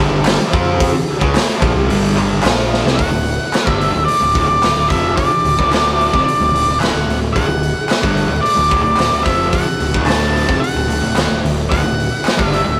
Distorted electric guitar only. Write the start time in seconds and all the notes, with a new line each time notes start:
Already playing: G2 D3
0.00 G3
0.39 muted distorted electric guitar stroke
0.51 F3 C4 F4
0.93 muted distorted electric guitar stroke
1.20 C#3 G#3
1.33 muted distorted electric guitar stroke
1.59 A#2 F3
1.74 C3 G3
1.87 G2 D3 G3
2.42 A#2 F3 A#3
2.84 C3 G3
2.98 D2 A2
3.12 D2 A2
3.64 G2 D3 G3
3.94 D2 A2
4.07 muted distorted electric guitar stroke
4.20 D2 A2
4.34 D2 A2
4.49 D2 A2
4.62 D2 A2
4.76 D2 A2
4.90 F2 C3 F3
5.31 muted distorted electric guitar stroke
5.45 D2 A2
5.58 D2 A2 D3
6.13 F2 C3
6.28 muted distorted electric guitar stroke
6.41 D2 A2
6.54 D2 A2
6.68 D2 A2
6.82 D2 A2
6.95 D2 A2
7.09 D2 A2
7.34 D2 A2
7.48 D2 A2
8.02 G2 D3 G3
8.29 D2 A2
8.42 muted distorted electric guitar stroke
8.55 D2 A2
8.69 D2 A2
8.84 D2 A2
8.97 D2 A2
9.11 D2 A2
9.24 F2 C3 F3
9.66 muted distorted electric guitar stroke
9.79 D2 A2
9.93 D2 A2 D3
10.47 F2 C3
10.62 muted distorted electric guitar stroke
10.76 D2 A2
10.88 D2 A2
11.01 D2 A2
11.16 D2 A2
11.30 D2 A2
11.43 D2 A2
11.70 D2 A2
11.83 D2 A2
12.37 G2 D3 G3
12.66 D2 A2